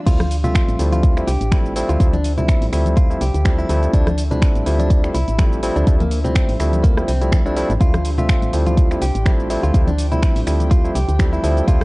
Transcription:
0.06 D2 F3 G3 A3 C4 D4 E4 F4 G4 C5 E5, kick, closed hi-hat, crash, shaker
0.20 cross-stick, closed hi-hat, high conga, shaker
0.31 open hi-hat, shaker
0.44 F3 G3 A3 C4 F4 E5, closed hi-hat, low conga, shaker
0.55 finger snap, kick, closed hi-hat, shaker
0.68 A1, closed hi-hat, shaker
0.79 D2 F3 G3 A3 C4 E4, open hi-hat, shaker
0.92 F4, closed hi-hat, high conga, shaker
1.03 kick, closed hi-hat, shaker
1.17 F3 G3 A3 C4 E4, finger snap, shaker
1.27 C2 G4, open hi-hat, shaker
1.41 A1, closed hi-hat, shaker
1.51 F3 G3 A3 C4 E4, finger snap, kick, closed hi-hat, high conga, shaker
1.66 shaker
1.76 F3 G3 A3 C4 E4, open hi-hat, shaker
1.89 D2 F4, closed hi-hat, shaker
2.00 D2 F3 G3 A3 C4 E4, kick, closed hi-hat, shaker
2.13 D4, closed hi-hat, high conga, shaker
2.24 open hi-hat, shaker
2.37 F3 G3 A3 C4 E4, closed hi-hat, low conga, shaker
2.48 finger snap, kick, closed hi-hat, shaker
2.62 A1, open hi-hat, shaker
2.72 D2 F3 G3 A3 C4 E4, finger snap, open hi-hat, shaker
2.86 closed hi-hat, high conga, shaker
2.97 F4, kick, closed hi-hat, shaker
3.10 F3 G3 A3 C4 E4, shaker
3.21 C2 G4, open hi-hat, shaker
3.34 D2, closed hi-hat, shaker
3.45 F3 G3 A3 C4 E4, finger snap, kick, closed hi-hat, high conga, shaker
3.58 E4, shaker
3.69 D2 F3 G3 A3 C4 E4, open hi-hat, shaker
3.83 closed hi-hat, shaker
3.93 D2 F3 A3 C4 D4 E4, kick, closed hi-hat, shaker
4.07 cross-stick, closed hi-hat, high conga, shaker
4.18 open hi-hat, shaker
4.31 F3 G3 A3 C4 D4 E4, closed hi-hat, low conga, shaker
4.42 finger snap, kick, closed hi-hat, shaker
4.55 A1, closed hi-hat, shaker
4.66 D2 F3 G3 A3 C4 E4, open hi-hat, shaker
4.79 D4, closed hi-hat, high conga, shaker
4.90 kick, closed hi-hat, shaker
5.04 F3 G3 A3 C4 E4, finger snap, shaker
5.14 C2 E4, open hi-hat, shaker
5.28 A1, closed hi-hat, shaker
5.39 F3 G3 A3 C4 E4, finger snap, kick, closed hi-hat, high conga, shaker
5.53 shaker
5.63 F3 G3 A3 C4 E4, open hi-hat, shaker
5.76 D2 D4, closed hi-hat, shaker
5.87 D2 F3 G3 A3 C4 E4, kick, closed hi-hat, shaker
6.00 A#3, closed hi-hat, high conga, shaker
6.11 open hi-hat, shaker
6.24 F3 G3 A3 C4 E4, closed hi-hat, low conga, shaker
6.35 finger snap, kick, closed hi-hat, shaker
6.49 A1, open hi-hat, shaker
6.60 D2 F3 G3 A3 C4 E4, finger snap, open hi-hat, shaker
6.73 closed hi-hat, high conga, shaker
6.84 A#3, kick, closed hi-hat, shaker
6.97 F3 G3 A3 C4 E4, cross-stick, shaker
7.08 C2 C4, open hi-hat, shaker
7.21 F3 G3 A3 C4 E4, closed hi-hat, shaker
7.32 finger snap, kick, closed hi-hat, high conga, shaker
7.46 F3 G3 A3 C4 D4 E4, shaker
7.56 F3 G3 A3 C4 E4, open hi-hat, shaker
7.70 A1, closed hi-hat, shaker
7.80 D2 F3 G3 A3 C4 E4 F4 G5, kick, closed hi-hat, shaker
7.94 cross-stick, closed hi-hat, high conga, shaker
8.05 open hi-hat, shaker
8.18 F3 G3 A3 C4 F4 E5, closed hi-hat, low conga, shaker
8.29 finger snap, kick, closed hi-hat, shaker
8.42 A1, closed hi-hat, shaker
8.53 D2 F3 G3 A3 C4 E4, open hi-hat, shaker
8.66 F4, closed hi-hat, high conga, shaker
8.77 kick, closed hi-hat, shaker
8.91 F3 G3 A3 C4 E4, finger snap, shaker
9.02 C2 G4, open hi-hat, shaker
9.15 A1, closed hi-hat, shaker
9.26 F3 G3 A3 C4 E4, finger snap, kick, closed hi-hat, high conga, shaker
9.40 shaker
9.50 F3 G3 A3 C4 E4, open hi-hat, shaker
9.63 D2 F4, closed hi-hat, shaker
9.74 D2 F3 G3 A3 C4 E4, kick, closed hi-hat, shaker
9.87 D4, closed hi-hat, high conga, shaker
9.98 open hi-hat, shaker
10.12 F3 G3 A3 C4 E4, closed hi-hat, low conga, shaker
10.23 finger snap, kick, closed hi-hat, shaker
10.36 A1, open hi-hat, shaker
10.47 D2 F3 G3 A3 C4 E4, finger snap, open hi-hat, shaker
10.60 closed hi-hat, high conga, shaker
10.71 F4, kick, closed hi-hat, shaker
10.84 F3 G3 A3 C4 E4, shaker
10.95 C2 G4, open hi-hat, shaker
11.08 D2, closed hi-hat, shaker
11.19 F3 G3 A3 C4 E4, finger snap, kick, closed hi-hat, high conga, shaker
11.33 E4, shaker
11.43 D2 F3 G3 A3 C4 E4, open hi-hat, shaker
11.57 closed hi-hat, shaker
11.68 D2 C4 E4 F4, kick, closed hi-hat, shaker
11.81 high conga

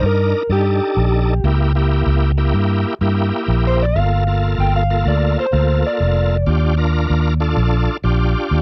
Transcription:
Already playing: D4 D#4 A#4
0.03 G2 A#4
0.50 G2 D4 D#4 G4 A4
0.97 A#1
1.44 C#2 A#3 E4 G4
1.75 A#3 E4 G4
2.06 C#2
2.37 A#3 E4 G4
2.54 G2
3.01 G2 A#3 E4 G4
3.48 A#1
3.67 C5
3.83 D5
3.96 G1 A#3 F4 A4 F5
4.27 A#3 F4 A4
4.58 G1 G5
4.76 F5
4.90 A#3 F4 A4
5.06 D2 D5
5.40 C5
5.52 D2 A#3 F4 A4
5.87 D5
6.00 F1
6.46 D#2 D4 F4 G4
6.77 D4 F4 A#4
7.10 D#2
7.40 D4 F4 A4
7.57 A#1
8.04 A#1 D4 F4 G4
8.51 D#2

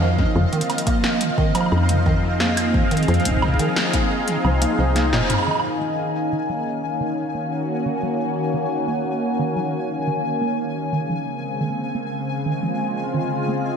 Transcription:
Already playing: F2 A#3 D#5 F5
0.01 F3
0.19 C4 D#4, kick
0.36 F2 C3
0.53 D#3, closed hi-hat
0.61 closed hi-hat
0.70 closed hi-hat, high woodblock
0.78 closed hi-hat
0.87 A#3, kick, closed hi-hat
1.04 snare
1.21 D#3, closed hi-hat
1.38 D#3, kick
1.47 D#4
1.55 F3, closed hi-hat, high woodblock
1.61 high woodblock
1.66 high woodblock
1.72 F2 D#4, high woodblock
1.78 high woodblock
1.83 high woodblock
1.89 C3, closed hi-hat
2.06 D#3, kick
2.28 G#4
2.40 A#3, snare
2.57 closed hi-hat, high woodblock
2.74 D#3, kick
2.91 D#3, closed hi-hat
2.97 closed hi-hat
3.03 closed hi-hat
3.08 F2 F3, closed hi-hat
3.14 closed hi-hat
3.20 closed hi-hat
3.25 D#4, kick, closed hi-hat
3.31 kick
3.37 kick
3.42 C3, kick, high woodblock
3.48 kick
3.54 kick
3.59 D#3, closed hi-hat
3.76 snare
3.94 A#3, kick, closed hi-hat
4.28 D#3, closed hi-hat
4.45 C2 F3, high woodblock
4.62 A#3, closed hi-hat
4.79 C2 F3
4.96 A#3, snare, closed hi-hat
5.13 F1 A#2, snare
5.30 closed hi-hat, mid tom, high woodblock
5.34 high woodblock
5.38 high woodblock
5.43 high woodblock
5.47 D#3 G#5, high woodblock
5.51 high woodblock
5.55 high woodblock
5.60 high woodblock
5.75 A#3
5.81 A#3 C#4
6.15 D#3
6.32 D#3
6.49 F#3
6.83 C#3
7.00 D#3
7.34 A#3
7.43 F#4
7.86 D#3
8.03 F#3
8.37 C#3
8.54 D#3
8.88 A#3
9.22 D#3
9.39 D#3
9.56 F#3
9.90 C#3
10.07 D#3
10.41 A#3
10.75 D#3
10.92 C#3 D#3
11.09 F3 G#3
11.26 C4 D#4
11.43 C#3
11.61 D#3
11.95 A#3
12.29 D#3
12.46 D#3
12.60 F3 F4
12.80 D#4
12.97 C#3
13.14 D#3
13.38 D#5
13.48 A#3

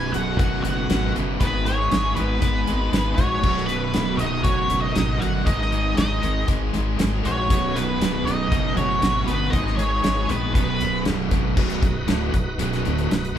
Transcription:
Already playing: B0 B1 F#2 B2 D#4 F#4 B4 G#5
0.13 B0 B1 F#2 B2 F#4 F#5, closed hi-hat
0.39 F#1 B1 F#2 B2 F#4 F#5, kick, closed hi-hat
0.63 F#1 B1 F#2 B2 F#4 F#5, closed hi-hat
0.89 G#1 B1 F#2 B2, snare, closed hi-hat
1.16 F#1 B1 F#2 B2, closed hi-hat
1.40 G#1 G#2 D#3 G#3 B3 D#4 G#4 B4, kick, closed hi-hat
1.65 G#2 D#3 G#3 G#4 C#5, closed hi-hat
1.91 G#1 G#2 D#3 G#3, snare, closed hi-hat
2.15 G#1 G#2 D#3 G#3 B3 B4, closed hi-hat
2.41 G#1 G#2 D#3 G#3, kick, closed hi-hat
2.67 G#1 G#2 D#3 G#3, closed hi-hat
2.92 G#1 G#2 D#3 G#3, snare, closed hi-hat
3.15 A#1 G#2 D#3 F#4 C#5, kick, closed hi-hat
3.19 G#3
3.42 B0 B1 F#2 B2 D#4 F#4 B4, kick, crash
3.57 snare
3.66 B1 F#2 B2 B3 B4, closed hi-hat
3.93 B0 B1 F#2 B2, snare, closed hi-hat
4.17 B0 B1 F#2 B2 D#4 D#5, closed hi-hat
4.42 F#1 B1 F#2 B2 F#4 C#5, kick, closed hi-hat
4.69 F#1 B1 F#2 B2, closed hi-hat
4.81 D#4 D#5
4.95 G#1 B1 F#2 B2, snare, closed hi-hat
5.19 G1 B1 F#2 B2 F#4 F#5, closed hi-hat
5.45 G#1 G#2 D#3 G#3 D#4 G#4 B4 D#5, kick, closed hi-hat
5.62 snare
5.71 G#2 D#3 G#3, closed hi-hat
5.96 G#1 G#2 D#3 G#3 D#4 D#5, snare, closed hi-hat
6.21 G#1 G#2 D#3 G#3, closed hi-hat
6.47 G#1 G#2 D#3 G#3, kick, closed hi-hat
6.73 G#1 G#2 D#3 G#3, closed hi-hat
6.97 G#1 G#2 D#3 G#3, snare, closed hi-hat
7.22 A#1 G#2 D#3 G#3 F#4 C#5, closed hi-hat
7.49 B0 B1 F#2 B2 D#4 F#4 B4, kick, closed hi-hat
7.75 B1 F#2 B2 B3 B4, closed hi-hat
7.99 B0 B1 F#2 B2, snare, closed hi-hat
8.25 B0 B1 F#2 B2 D#4 D#5, closed hi-hat
8.50 F#1 B1 F#2 B2, kick, closed hi-hat
8.76 F#1 B1 F#2 B2 F#4 C#5, closed hi-hat
9.01 G#1 B1 F#2 B2, snare, closed hi-hat
9.26 G1 B1 F#2 B2 B3 B4, closed hi-hat
9.50 G#1 G#2 D#3 G#3 D#4 D#5, kick, closed hi-hat
9.54 D#4 G#4 B4
9.67 snare
9.76 G#2 D#3 G#3 G#4 C#5, closed hi-hat
10.04 G#1 G#2 D#3 G#3, snare, closed hi-hat
10.29 A#1 G#2 D#3 G#3 B3 B4, closed hi-hat
10.54 B0 B1 F#2 B2 B3 D#4 F#4 B4, kick, closed hi-hat
10.80 B0 B1 F#2 B2, closed hi-hat
11.05 B0 B1 F#2 B2, snare, closed hi-hat
11.31 G#1 B1 F#2 B2, kick, closed hi-hat
11.57 B0 B1 F#2 B2 D#4 F#4 B4, kick, crash
11.70 closed hi-hat
11.82 B0 B1 F#2, kick, closed hi-hat
12.07 D1 D2 A2 D3, snare, closed hi-hat
12.33 B0 B1 F#2, kick, closed hi-hat
12.59 B0 B1 F#2 B2, closed hi-hat
12.73 snare, closed hi-hat
12.84 D1 D2 A2 D3, closed hi-hat
12.98 closed hi-hat
13.09 B1 F#2, snare, closed hi-hat
13.25 closed hi-hat
13.35 B1 F#2

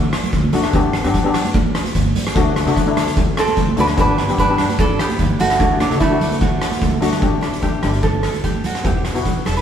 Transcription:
Already playing: A3 D4 F#4
0.13 cross-stick, closed hi-hat
0.23 closed hi-hat, high conga, low conga
0.32 D2, kick, closed hi-hat
0.44 high conga
0.53 G#1 A3 D4 F#4, closed hi-hat, low conga
0.64 cross-stick, closed hi-hat
0.73 G1 B3 D4 G4, kick, closed hi-hat
0.93 cross-stick, closed hi-hat
1.04 G2 B3 D4 G4, closed hi-hat
1.14 kick, closed hi-hat
1.24 B3 D4 G4
1.34 cross-stick, closed hi-hat, low conga
1.45 closed hi-hat, high conga
1.54 kick, closed hi-hat, high conga
1.75 cross-stick, closed hi-hat
1.84 closed hi-hat, high conga
1.95 G1, kick, closed hi-hat
2.05 high conga
2.15 A1, closed hi-hat, low conga
2.27 cross-stick, closed hi-hat
2.35 D2 A3 D4 F#4, kick, closed hi-hat
2.56 cross-stick, closed hi-hat
2.66 D3 A3 D4 F#4, closed hi-hat
2.76 kick, closed hi-hat
2.86 A3 D4 E4
2.97 cross-stick, closed hi-hat, low conga
3.07 closed hi-hat, high conga
3.16 kick, closed hi-hat, high conga
3.37 C4 A4, cross-stick, closed hi-hat
3.47 closed hi-hat, high conga
3.57 D2, kick, closed hi-hat
3.69 high conga
3.76 D2 A3 D4 F#4 B4, closed hi-hat, low conga
3.88 cross-stick, closed hi-hat
3.97 G1 B3 D4 G4 B4, kick, closed hi-hat
4.18 cross-stick, closed hi-hat
4.28 G2 B3 D4 G4, closed hi-hat
4.38 D4 B4, kick, closed hi-hat
4.49 B3 D4 G4
4.58 cross-stick, closed hi-hat, low conga
4.70 closed hi-hat, high conga
4.78 D4 A4, kick, closed hi-hat, high conga
4.99 B3 G4, cross-stick, closed hi-hat
5.09 closed hi-hat, high conga
5.19 G1, kick, closed hi-hat
5.30 high conga
5.39 G1 A3 F#4, closed hi-hat, low conga
5.50 cross-stick, closed hi-hat
5.59 D2 A3 D4 F#4, kick, closed hi-hat
5.80 F#3 D4, cross-stick, closed hi-hat, high conga
5.90 D3 A3 D4 F#4, closed hi-hat
6.00 A3 E4, kick, closed hi-hat
6.10 A3 D4 F#4
6.21 closed hi-hat, low conga
6.31 closed hi-hat, high conga
6.41 A3 F#4, kick, closed hi-hat
6.62 cross-stick, closed hi-hat
6.71 closed hi-hat, high conga
6.80 D2, kick, closed hi-hat, high conga
6.91 high conga
7.01 D2 A3 D4 F#4, closed hi-hat, low conga
7.12 cross-stick, closed hi-hat, low conga
7.21 G1 A3 D4 G4, kick, closed hi-hat
7.41 D4, cross-stick, closed hi-hat
7.53 G1, closed hi-hat
7.62 A3 D4 G4, kick, closed hi-hat
7.83 G1 A3 D4 G4, cross-stick, closed hi-hat, low conga
7.94 closed hi-hat
8.03 A4, kick, closed hi-hat
8.14 high conga
8.23 cross-stick, closed hi-hat
8.34 G1, closed hi-hat, high conga
8.44 G4, kick, closed hi-hat
8.54 high conga
8.64 G2 F#4, closed hi-hat, low conga
8.75 cross-stick, closed hi-hat
8.83 E1 B3 E4 G4, kick, closed hi-hat
9.05 cross-stick, closed hi-hat
9.14 E1 B3 E4 F#4, closed hi-hat
9.25 kick, closed hi-hat
9.45 E1 A4, cross-stick, closed hi-hat, low conga
9.57 B4, closed hi-hat

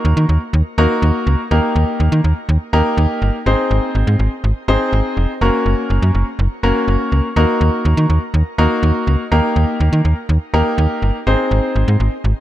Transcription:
Already playing: A#3 D#4 F#4 A#4
0.05 D#2
0.17 D#3
0.29 D#2
0.53 D#2
0.78 D#2 A#3 D#4 F#4 A#4
1.02 D#2
1.27 C#2
1.51 D#2 A#3 D#4 G4 A#4
1.76 D#2
2.00 D#2
2.12 D#3
2.24 D#2
2.49 D#2
2.73 D#2 A#3 D#4 G4 A#4
2.97 D#2
3.22 G1
3.46 G#1 C4 D#4 G#4 C5
3.71 G#1
3.95 G#1
4.07 G#2
4.19 G#1
4.44 G#1
4.68 G#1 C4 D#4 G#4 C5
4.93 G#1
5.17 F1
5.41 F#1 A#3 C#4 F#4 A#4
5.66 F#1
5.90 F#1
6.02 F#2
6.15 F#1
6.39 F#1
6.63 F#1 A#3 C#4 F#4 A#4
6.88 F#1
7.12 C#2
7.36 D#2 A#3 D#4 F#4 A#4
7.61 D#2
7.85 D#2
7.97 D#3
8.10 D#2
8.34 D#2
8.58 D#2 A#3 D#4 F#4 A#4
8.83 D#2
9.07 C#2
9.32 D#2 A#3 D#4 G4 A#4
9.56 D#2
9.80 D#2
9.93 D#3
10.05 D#2
10.29 D#2
10.54 D#2 A#3 D#4 G4 A#4
10.78 D#2
11.02 G1
11.27 G#1 C4 D#4 G#4 C5
11.51 G#1
11.76 G#1
11.88 G#2
12.00 G#1
12.24 G#1

